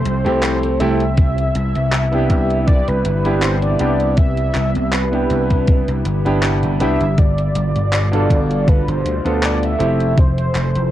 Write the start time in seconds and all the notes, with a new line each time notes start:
Already playing: C3 F3 A3 C4 E4 G4 C5
0.05 C2, closed hi-hat
0.25 C2 A3 C4 E4 G4, closed hi-hat
0.43 clap, closed hi-hat
0.63 closed hi-hat
0.80 C2 A3 C4 E4 G4 E5, closed hi-hat
1.00 closed hi-hat
1.17 G3 B3, kick, closed hi-hat
1.38 closed hi-hat
1.55 C2, closed hi-hat
1.76 C2, closed hi-hat
1.93 clap, closed hi-hat
2.12 B3 D4 E4 G4, closed hi-hat
2.30 C2, kick, closed hi-hat
2.50 closed hi-hat
2.67 D5, kick, closed hi-hat
2.88 C2 B4, closed hi-hat
3.05 G1, closed hi-hat
3.24 G1 B3 D4 E4 G4, closed hi-hat
3.42 C5, clap, closed hi-hat
3.62 D5, closed hi-hat
3.79 C2 B3 D4 E4 G4, closed hi-hat
4.00 closed hi-hat
4.17 E5, kick, closed hi-hat
4.37 closed hi-hat
4.55 C2, clap, closed hi-hat
4.75 C2, closed hi-hat
4.93 B4, clap, closed hi-hat
5.11 B3 D4 E4 G4, closed hi-hat
5.30 C2, closed hi-hat
5.50 kick, closed hi-hat
5.67 kick, closed hi-hat
5.88 C2, closed hi-hat
6.05 G1, closed hi-hat
6.25 G1 B3 D4 E4 G4, closed hi-hat
6.43 clap, closed hi-hat
6.63 G1, closed hi-hat
6.80 C2 B3 D4 E4 G4 E5, closed hi-hat
7.00 G1, closed hi-hat
7.17 B2 D3 F4 D5, kick, closed hi-hat
7.38 closed hi-hat
7.55 G1, closed hi-hat
7.76 G1, closed hi-hat
7.93 clap, closed hi-hat
8.12 B2 D4 F4 A4, closed hi-hat
8.30 G1, kick, closed hi-hat
8.51 closed hi-hat
8.68 B4, kick, closed hi-hat
8.88 G1 C5, closed hi-hat
9.05 D2, closed hi-hat
9.24 D2 B3 D4 F4 A4, closed hi-hat
9.43 D5, clap, closed hi-hat
9.63 E5, closed hi-hat
9.79 F1 E3 F3 A3 C4 E4 G4, closed hi-hat
10.00 closed hi-hat
10.18 C5, kick, closed hi-hat
10.38 C5, closed hi-hat
10.55 F1, clap, closed hi-hat
10.75 F1, closed hi-hat